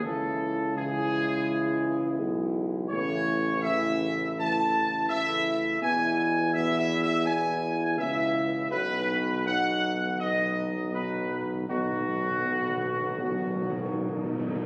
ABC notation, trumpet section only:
X:1
M:4/4
L:1/8
Q:1/4=82
K:Bmix
V:1 name="Trumpet section"
A2 G4- G z | c2 e2 a2 e2 | g2 (3e e e g2 e2 | B2 f2 d2 B2 |
F6- F z |]